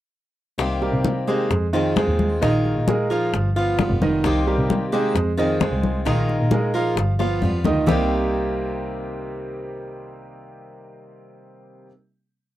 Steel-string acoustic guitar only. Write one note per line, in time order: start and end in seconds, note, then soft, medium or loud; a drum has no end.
0.58 1.27 C3 medium
0.58 1.27 D#3 medium
0.58 1.27 A#3 medium
0.58 1.27 C4 medium
0.58 1.26 G4 medium
1.27 1.50 D#3 soft
1.27 1.50 A#3 medium
1.27 1.50 C4 medium
1.27 1.50 G4 medium
1.51 muted steel-string acoustic guitar stroke medium
1.73 1.95 D#3 medium
1.73 1.96 G#3 medium
1.73 1.96 C4 medium
1.73 1.96 F4 medium
1.96 2.41 D#3 soft
1.96 2.41 G#3 medium
1.96 2.42 C4 soft
1.96 2.42 F4 soft
2.42 3.10 D#3 medium
2.42 3.10 G#3 medium
2.42 3.10 D#4 medium
2.42 3.10 F4 medium
2.42 3.09 A#4 medium
3.10 3.33 G#3 medium
3.10 3.33 D#4 medium
3.10 3.33 F4 medium
3.10 3.32 A#4 medium
3.34 muted steel-string acoustic guitar stroke medium
3.56 3.79 B3 medium
3.56 3.78 F4 medium
3.79 4.24 G3 soft
3.79 4.24 B3 medium
3.79 4.25 F4 medium
4.24 4.92 C3 medium
4.24 4.92 D#3 medium
4.24 4.92 A#3 medium
4.24 4.92 C4 medium
4.24 4.91 G4 medium
4.92 5.15 D#3 medium
4.92 5.15 A#3 medium
4.92 5.15 C4 medium
4.92 5.14 G4 medium
5.16 muted steel-string acoustic guitar stroke medium
5.37 5.59 D#3 medium
5.37 5.60 G#3 medium
5.37 5.60 C4 medium
5.37 5.60 F4 medium
5.60 6.04 D#3 soft
5.60 6.05 G#3 soft
5.60 6.06 C4 soft
5.60 6.06 F4 medium
6.05 6.73 D#3 medium
6.05 6.73 G#3 medium
6.05 6.74 D#4 medium
6.05 6.73 F4 medium
6.05 6.73 A#4 medium
6.74 6.97 G#3 soft
6.74 6.97 D#4 medium
6.74 6.96 F4 medium
6.74 6.96 A#4 medium
6.97 muted steel-string acoustic guitar stroke medium
7.19 7.42 B3 medium
7.19 7.41 F4 medium
7.42 7.87 G3 soft
7.42 7.87 B3 medium
7.42 7.88 F4 soft
7.86 11.90 C3 medium
7.86 11.91 D#3 medium
7.86 11.92 A#3 medium
7.86 11.93 C4 medium
7.86 11.93 G4 medium